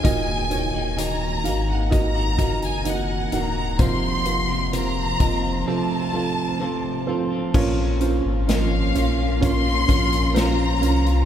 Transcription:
<<
  \new Staff \with { instrumentName = "Violin section" } { \time 4/4 \key bes \minor \tempo 4 = 64 aes''4 bes''8. ges''16 bes''8. aes''16 ges''8 bes''8 | c'''4 bes''4 a''4. r8 | r4 f''4 c'''4 bes''4 | }
  \new Staff \with { instrumentName = "Upright piano" } { \time 4/4 \key bes \minor <ees' ges' bes' ees''>8 <ees' ges' bes' des''>8 <ees' ges' bes' ees''>8 <ees' ges' bes' f''>8 <ees' ges' bes' ees''>8 <ees' ges' bes' ees''>8 <ees' ges' bes' ees''>8 <ees' ges' bes' ges''>8 | <c' f' bes' c''>8 <c' f' bes' c''>8 <c' f' bes' c''>8 <c' f' bes' ees''>8 <c' f' a' c''>8 <c' f' a' c''>8 <c' f' a' c''>8 <c' f' a' c''>8 | <des' f' bes' des''>8 <des' f' bes' c''>8 <des' f' bes' ees''>8 <des' f' bes' des''>8 <des' f' bes' des''>8 <des' f' bes' des''>8 <des' f' bes' c''>8 <des' f' bes' des''>8 | }
  \new Staff \with { instrumentName = "Upright piano" } { \clef bass \time 4/4 \key bes \minor bes,4. r2 r8 | c4. r8 c4. r8 | <bes, f>4. r2 r8 | }
  \new Staff \with { instrumentName = "String section" } { \time 4/4 \key bes \minor r1 | r1 | <bes des' f'>1 | }
  \new Staff \with { instrumentName = "Clean electric guitar" } { \time 4/4 \key bes \minor <ees bes ees' ges'>8. <bes ees' ges'>16 <ees bes ees' ges'>8 <ees bes ees' ges'>16 <bes ees' ges'>8 <bes ees' ges'>16 <ees bes ees' ges'>8 <ees bes ees' ges'>8 <ees bes ees' ges'>16 <bes ees' ges'>16 | <f, c f bes c' f'>8. <f bes c' f'>16 <f, c f bes c' f'>8 <f bes c' f'>16 <f bes c' f'>16 <f, c f a c' f'>16 <f a c' f'>16 <f a c' f'>8 <f, c f a c' f'>8 <f a c' f'>16 <f a c' f'>16 | <bes, f bes des' f'>16 <bes des' f'>8. <bes, f bes des' f'>8 <f bes des' f'>16 <bes des' f'>8 <bes des' f'>16 <f bes des' f'>8 <bes, f bes des' f'>8 <f bes des' f'>16 <bes des' f'>16 | }
  \new Staff \with { instrumentName = "Sub bass" } { \clef bass \time 4/4 \key bes \minor ees,,8. ees,,8. aes,,4 ges,,4 ees,,8 | f,,4. f,,8 r2 | bes,,8. aes,,8. bes,,4 bes,,4 c,8 | }
  \new DrumStaff \with { instrumentName = "Drums" } \drummode { \time 4/4 <hh bd>8 hh8 hh8 hh8 <hh bd>8 <hh bd>16 hh16 hh8 hh8 | <hh bd>8 hh8 hh8 <hh bd>8 r4 r4 | <cymc bd>8 hh8 <hh sn>8 hh8 <hh bd>8 <hh bd>16 hh16 <hh sn>8 hh16 hh16 | }
>>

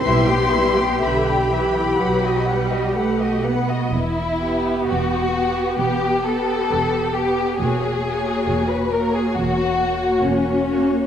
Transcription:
<<
  \new Staff \with { instrumentName = "Violin section" } { \time 4/4 \key e \minor \tempo 4 = 66 c'''4 b''2 r4 | r8 b'4 b'4 b'4 b'8 | cis''8 cis''4 cis''4 cis''4 cis''8 | }
  \new Staff \with { instrumentName = "Violin section" } { \time 4/4 \key e \minor <b' e''>16 <g' g''>16 <b' e''>16 <g' g''>16 <b' e''>16 <g' g''>16 <b' e''>16 <g' g''>16 <b' fis''>16 <fis' dis''>16 <b' fis''>16 <fis' dis''>16 <b' fis''>16 <fis' dis''>16 <b' fis''>16 <fis' dis''>16 | e'4 fis'4 g'8 a'4 g'8 | gis'4~ gis'16 b'16 ais'16 gis'16 fis'4 cis'4 | }
  \new Staff \with { instrumentName = "Viola section" } { \time 4/4 \key e \minor <g e'>16 <b g'>16 <g e'>16 <b g'>16 d8 e8 fis8 g8 a8 b8 | r8 <b g'>4 <b g'>4 <b g'>4 <b g'>8 | <ais fis'>8 <ais fis'>4 <ais fis'>4 <ais fis'>4 <ais fis'>8 | }
  \new Staff \with { instrumentName = "Cello section" } { \clef bass \time 4/4 \key e \minor g'2.~ g'8 r8 | e,4 e,4 e,4 e,4 | e,4 e,4 e,4 e,4 | }
  \new Staff \with { instrumentName = "Double bass section" } { \clef bass \time 4/4 \key e \minor b,,4 b,,4 b,,4 b,,4 | e,,4 e,,4 e,,4 e,,4 | e,,4 e,,4 e,,4 e,,4 | }
>>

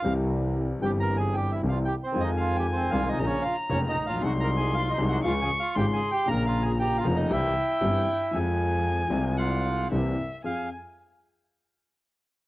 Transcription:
<<
  \new Staff \with { instrumentName = "Violin" } { \time 4/4 \key f \minor \tempo 4 = 115 r1 | aes''2 bes''2 | c'''2 des'''4 c'''4 | bes''4 bes''4 g''2 |
aes''2 ges''4 e''4 | aes''8 r2. r8 | }
  \new Staff \with { instrumentName = "Bandoneon" } { \time 4/4 \key f \minor r4 \tuplet 3/2 { r8. <g' g''>8 <bes' bes''>16~ <bes' bes''>16 <aes' aes''>8 <g' g''>8 <e' e''>16~ <e' e''>16 <f' f''>8 <g' g''>8 <c' c''>16~ } | \tuplet 3/2 { <c' c''>16 <ees' ees''>8 <f' f''>8 <g' g''>16~ <g' g''>16 <c' c''>8 <f' f''>8 <ees' ees''>16~ <ees' ees''>16 <des' des''>8 <f' f''>8. <des' des''>8 <ees' ees''>8 <f' f''>8 } | \tuplet 3/2 { <ges' ges''>8 <bes' bes''>8 <aes' aes''>8 <f' f''>8 <ees' ees''>8 <ges' ges''>8 <f' f''>8 <aes' aes''>8 <f' f''>8 <g' g''>8 <aes' aes''>8 <g' g''>8 } | \tuplet 3/2 { <bes' bes''>8 <f' f''>8 <aes' aes''>8 <g' g''>8 <f' f''>8 <ees' ees''>8 } <e' e''>2 |
r2 <f' f''>4 r4 | f''8 r2. r8 | }
  \new Staff \with { instrumentName = "Grand piano" } { \clef bass \time 4/4 \key f \minor <c, c e g c' g'>4. <g,, g, e g c' g'>4. <c, c e g c' g'>8 r8 | <f, ees f aes c' f'>4. <c, c ees aes c' f'>8 <bes,, bes, des f bes f'>8 r8 <f,, f, des f bes f'>8 r32 a,,32 bes,,32 b,,32 | <c, c ges aes ees'>4. <c, c ges aes ees'>8 <des, des f aes f'>8 r8 <aes,, aes, des f aes f'>8 r8 | <bes,, bes, des f bes f'>4. <f,, f, des f bes f'>8 <c, c e g c' g'>8 r8 <g,, g, e g c' g'>8 r8 |
<f, f aes c' aes'>4. <c, c f aes c' aes'>4. <c, c e bes c' g'>8 r8 | <f, c' f' aes'>8 r2. r8 | }
  \new Staff \with { instrumentName = "Double bass" } { \clef bass \time 4/4 \key f \minor c,4. g,,4. c,8 r8 | f,4. c,8 bes,,8 r8 f,,8 bes,,8 | c,4. c,8 des,8 r8 aes,,8 r8 | bes,,4. f,,8 c,8 r8 g,,8 r8 |
f,4. c,4. c,8 r8 | f,8 r2. r8 | }
>>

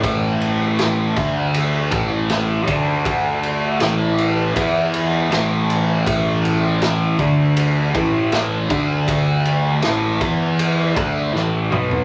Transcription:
<<
  \new Staff \with { instrumentName = "Distorted electric guitar" } { \clef bass \time 4/4 \key d \mixolydian \tempo 4 = 80 <a, e a>4. <d a d'>4 <a, e a>4 <d a d'>8~ | <d a d'>4 <a, e a>4 <e b e'>4 <a, e a>4 | <a, e a>4. <d a d'>4 <a, e a>4 <d a d'>8~ | <d a d'>4 <a, e a>8 <e b e'>4 <d a d'>8 <a, e a>8 <b, fis b>8 | }
  \new Staff \with { instrumentName = "Picked electric bass" } { \clef bass \time 4/4 \key d \mixolydian a,,4. d,4 a,,4 d,8~ | d,4 a,,4 e,4 a,,4 | a,,4. d,4 a,,4 d,8~ | d,4 a,,8 e,4 d,8 a,,8 b,,8 | }
  \new DrumStaff \with { instrumentName = "Drums" } \drummode { \time 4/4 <bd cymr>8 cymr8 <cymr sn>8 <bd cymr>8 cymr8 <bd cymr>8 <cymr sn>8 <bd cymr>8 | <bd cymr>8 cymr8 <cymr sn>8 cymr8 <bd cymr>8 cymr8 <cymr sn>8 cymr8 | <bd cymr>8 cymr8 <cymr sn>8 <bd cymr>8 cymr8 <bd cymr>8 <cymr sn>8 <bd cymr>8 | <bd cymr>8 cymr8 <cymr sn>8 <bd cymr>8 cymr8 <bd cymr>8 sn8 toml16 tomfh16 | }
>>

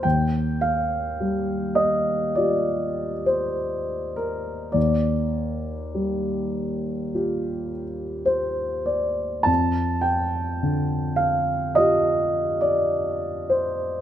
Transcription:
\new Staff \with { instrumentName = "Grand piano" } { \time 4/4 \key ees \major \tempo 4 = 52 << { g''8 f''4 ees''8 d''8. c''8. bes'8 | d''2~ d''8 r8 c''8 d''8 | a''8 g''4 f''8 ees''8. d''8. c''8 | } \\ { ees,4 g4 <f' g'>2 | ees,4 g4 <f' g'>2 | f,4 d4 <f' g'>2 | } >> }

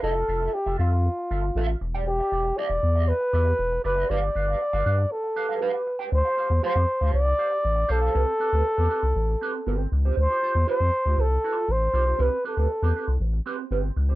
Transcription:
<<
  \new Staff \with { instrumentName = "Flugelhorn" } { \time 4/4 \key d \dorian \tempo 4 = 118 a'4 g'8 f'2 r8 | g'4 d''4 b'4. b'8 | d''2 a'4 b'8. r16 | c''4 c''4 d''4. a'8~ |
a'2.~ a'8 r8 | c''4 c''4 a'4 c''4 | b'8 a'4. r2 | }
  \new Staff \with { instrumentName = "Clean electric guitar" } { \time 4/4 \key d \dorian <f' a' e''>8 <f' a' e''>16 <f' a' e''>16 r16 <f' a' e''>16 <f' a' e''>16 r8. <f' a' e''>16 r16 <f' a' e''>16 r8 <g' d'' g''>16 | r16 <g' d'' e''>16 <g' d'' e''>16 r16 <g' d'' e''>16 r8 <g' d'' e''>16 r8 <g' d'' e''>16 r8. <g' d'' e''>16 <g' d'' e''>16 | <g' b' f''>16 r16 <g' b' f''>16 <g' b' f''>16 r16 <g' b' f''>16 <g' b' f''>16 r8. <g' b' f''>16 <g' b' f''>16 <g' b' f''>16 r8 <g' b' g''>16 | r16 <g' c'' f''>16 <g' c'' f''>16 r16 <g' c'' f''>16 r8 <g' c'' f''>16 r8 <g' c'' f''>16 r8. <g' c'' f''>16 <g' c'' f''>16 |
<c' g' b'>16 r16 <c' g' b'>16 <c' g' b'>16 r16 <c' g' b'>16 <c' g' b'>16 r8. <c' g' b'>16 r16 <c' g' b'>8 r16 <c' g' c''>16 | r16 <f' g' c''>16 <f' g' c''>16 r16 <f' g' c''>16 r8 <f' g' c''>16 r8 <f' g' c''>8 r8 <f' g' c''>16 <f' g' c''>16 | <c' g' b'>16 r16 <c' g' b'>16 <c' g' b'>16 r16 <c' g' b'>16 <c' g' b'>16 r8. <c' g' b'>16 r16 <c' g' b'>16 r8 <c' g' c''>16 | }
  \new Staff \with { instrumentName = "Analog synth bass" } { \clef bass \time 4/4 \key d \dorian f,,8 f,,8 r16 f,,16 f,8. r16 g,,8 a,,8 e,,8~ | e,,8 e,,8 r16 e,,16 e,8. r16 e,8 e,,8 fis,,8 | g,,8 g,,8 r16 g,,16 g,8 r2 | d,16 r8 e,16 r16 f,16 r16 d,16 c,8 r8 a,,8 b,,8 |
c,16 r8 d,16 r16 e,16 r16 c,16 a,,8 r8 g,,8 des,8 | d,16 r8 e,16 r16 f,16 r16 d,16 c,8 r8 a,,8 b,,8 | c,16 r8 d,16 r16 e,16 r16 c,16 a,,8 r8 g,,8 des,8 | }
>>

